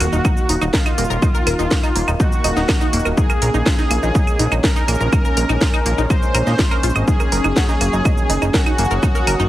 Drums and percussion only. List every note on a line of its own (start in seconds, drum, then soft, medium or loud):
0.00 open hi-hat medium
0.00 claves medium
0.00 shaker soft
0.13 shaker soft
0.25 kick loud
0.25 claves medium
0.25 shaker medium
0.37 shaker soft
0.49 open hi-hat loud
0.49 shaker soft
0.62 claves soft
0.62 shaker soft
0.74 kick loud
0.74 snare loud
0.74 shaker soft
0.86 claves medium
0.86 shaker soft
0.98 open hi-hat medium
0.98 shaker soft
1.04 shaker medium
1.10 shaker soft
1.22 kick loud
1.22 claves soft
1.22 shaker medium
1.35 shaker soft
1.47 open hi-hat loud
1.47 claves medium
1.59 shaker soft
1.71 kick loud
1.71 snare loud
1.71 shaker medium
1.83 claves soft
1.83 shaker soft
1.96 open hi-hat medium
1.96 shaker soft
2.08 claves medium
2.08 shaker soft
2.20 kick loud
2.20 shaker medium
2.32 shaker soft
2.44 open hi-hat loud
2.44 claves medium
2.44 shaker soft
2.57 snare soft
2.57 shaker soft
2.69 kick loud
2.69 snare loud
2.69 claves medium
2.69 shaker soft
2.81 shaker soft
2.93 open hi-hat loud
2.93 shaker soft
2.99 shaker medium
3.05 claves medium
3.05 shaker soft
3.17 kick loud
3.17 shaker medium
3.30 claves medium
3.30 shaker soft
3.42 open hi-hat loud
3.54 shaker soft
3.66 kick loud
3.66 snare loud
3.66 claves medium
3.66 shaker medium
3.79 snare soft
3.79 shaker soft
3.91 open hi-hat loud
3.91 claves medium
3.91 shaker soft
4.03 shaker soft
4.15 kick loud
4.15 shaker medium
4.27 claves medium
4.27 shaker soft
4.39 open hi-hat loud
4.39 shaker soft
4.52 claves medium
4.52 shaker soft
4.64 kick loud
4.64 snare loud
4.64 shaker soft
4.76 shaker soft
4.88 open hi-hat loud
4.88 claves medium
4.88 shaker soft
4.94 shaker medium
5.00 shaker soft
5.13 kick loud
5.13 claves medium
5.13 shaker medium
5.25 shaker soft
5.37 open hi-hat loud
5.49 claves medium
5.49 shaker soft
5.61 kick loud
5.61 snare loud
5.61 shaker medium
5.74 claves medium
5.74 shaker soft
5.86 open hi-hat loud
5.86 shaker soft
5.98 shaker soft
6.10 kick loud
6.10 claves medium
6.10 shaker medium
6.22 shaker soft
6.35 open hi-hat loud
6.35 claves medium
6.35 shaker soft
6.47 snare soft
6.47 shaker soft
6.59 kick loud
6.59 snare loud
6.59 shaker soft
6.71 claves medium
6.71 shaker soft
6.83 open hi-hat loud
6.83 shaker soft
6.89 shaker medium
6.96 claves medium
6.96 shaker soft
7.08 kick loud
7.08 shaker medium
7.20 claves medium
7.20 shaker soft
7.32 open hi-hat loud
7.44 claves medium
7.44 shaker soft
7.56 kick loud
7.56 snare loud
7.56 shaker medium
7.69 snare soft
7.69 shaker soft
7.81 open hi-hat medium
7.81 claves medium
7.81 shaker soft
7.93 shaker soft
8.05 kick loud
8.05 claves medium
8.05 shaker medium
8.18 shaker soft
8.30 open hi-hat loud
8.30 shaker soft
8.42 claves medium
8.42 shaker soft
8.54 kick loud
8.54 snare loud
8.54 shaker soft
8.66 claves medium
8.66 shaker soft
8.78 open hi-hat medium
8.78 shaker soft
8.85 shaker medium
8.91 shaker soft
9.03 kick loud
9.03 claves medium
9.03 shaker medium
9.15 shaker soft
9.27 open hi-hat loud
9.27 claves medium
9.40 shaker soft